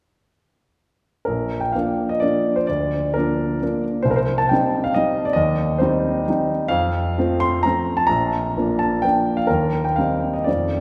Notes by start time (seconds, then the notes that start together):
1.25 A#1 A#4
1.60 G5
1.72 F3 A#3 D4 F5
2.09 D#5
2.20 F3 A#3 D4 D5
2.56 C5
2.67 D2 D5
3.14 F3 A#3 D4 A#4
3.62 F3 A#3 D4
4.03 C2 C5
4.11 A#4
4.16 C5
4.38 A5
4.49 G3 C4 D#4 G5
4.84 F5
4.94 G3 C4 D#4 D#5
5.25 D5
5.33 D#2 D#5
5.78 G3 C4 D#4 C5
6.28 G3 C4 D#4
6.68 F2 F5
7.18 F3 A3 C4
7.40 C6
7.63 F3 A3 C4 A#5
7.97 A5
8.07 A#1 A#5
8.58 F3 A#3 D4
8.79 A5
9.02 F3 A#3 D4 G5
9.37 F5
9.47 D#2 A#4
9.85 G5
9.96 G3 C4 D#4 F5
10.34 D#5
10.44 F2 A3 C4 D#4 D5